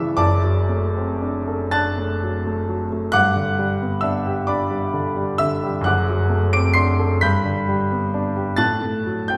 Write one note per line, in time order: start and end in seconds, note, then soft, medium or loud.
0.00 0.15 G2 medium
0.00 0.20 C#3 medium
0.00 0.20 E3 medium
0.00 0.20 A3 medium
0.00 0.20 C#4 medium
0.00 0.20 E4 medium
0.00 0.20 C#5 medium
0.00 0.18 D5 medium
0.00 0.15 E5 medium
0.00 0.17 A5 medium
0.00 0.20 C#6 medium
0.00 0.17 D6 loud
0.00 0.17 E6 loud
0.17 3.10 F#1 medium
0.17 3.11 F#2 medium
0.17 1.70 D5 medium
0.17 1.70 A5 medium
0.17 1.73 D6 loud
0.44 0.85 F#3 medium
0.69 1.11 A3 medium
0.96 1.38 C4 medium
1.22 1.64 D4 medium
1.48 1.88 A4 medium
1.71 2.13 D4 medium
1.71 3.09 A5 medium
1.71 3.10 F#6 medium
1.71 3.13 A6 loud
1.98 2.36 A3 medium
2.23 2.60 F#3 medium
2.47 2.83 A3 medium
2.69 3.05 F#3 medium
2.92 3.15 A3 medium
3.12 5.83 G2 medium
3.12 4.00 F#5 loud
3.12 3.99 D6 loud
3.12 4.03 F#6 loud
3.36 3.72 D3 medium
3.59 3.95 G3 medium
3.82 4.17 B3 medium
4.01 4.39 D4 medium
4.01 4.45 E5 medium
4.01 4.47 E6 loud
4.26 4.63 G4 medium
4.47 4.86 D4 medium
4.47 4.91 D5 medium
4.47 4.91 B5 medium
4.47 4.94 D6 loud
4.71 5.08 G3 medium
4.94 5.31 D3 medium
5.16 5.54 G3 medium
5.38 5.78 D3 medium
5.38 5.83 E5 medium
5.38 5.86 E6 loud
5.63 5.86 G3 medium
5.81 7.16 F#2 medium
5.81 6.54 F#6 loud
5.85 7.18 F#1 medium
5.85 6.50 F#5 medium
5.85 6.51 D6 medium
6.10 6.46 F#3 medium
6.30 6.67 A3 medium
6.53 6.91 C4 medium
6.53 6.75 D6 medium
6.53 6.77 D7 loud
6.74 7.13 D4 medium
6.74 7.18 C6 medium
6.74 7.21 C7 loud
6.99 7.23 A4 medium
7.21 8.56 G2 medium
7.21 8.56 B5 medium
7.21 8.55 G6 medium
7.21 8.59 B6 loud
7.45 7.82 D3 medium
7.68 8.05 G3 medium
7.91 8.28 B3 medium
8.14 8.51 D4 medium
8.36 8.60 G4 medium
8.57 9.37 A2 medium
8.57 9.25 A5 medium
8.57 9.25 F#6 medium
8.57 9.28 A6 loud
8.82 9.20 A3 medium
9.06 9.37 F#3 medium
9.28 9.37 C4 medium
9.28 9.37 G5 medium
9.28 9.37 G6 medium